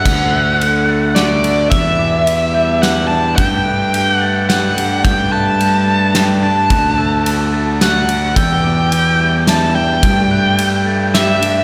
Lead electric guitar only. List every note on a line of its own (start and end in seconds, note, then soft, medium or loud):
0.00 1.21 F#5 medium
1.15 1.70 D5 medium
1.70 2.85 E5 medium
2.82 3.07 F#5 medium
3.08 3.36 A5 medium
3.36 4.12 G5 medium
4.12 4.49 F#5 medium
4.49 5.04 F#5 medium
5.04 5.32 G5 medium
5.32 6.42 A5 medium
6.43 7.82 A5 medium
7.82 8.36 F#5 medium
8.36 9.43 G5 medium
9.49 9.75 A5 medium
9.75 11.18 G5 medium
11.14 11.64 E5 medium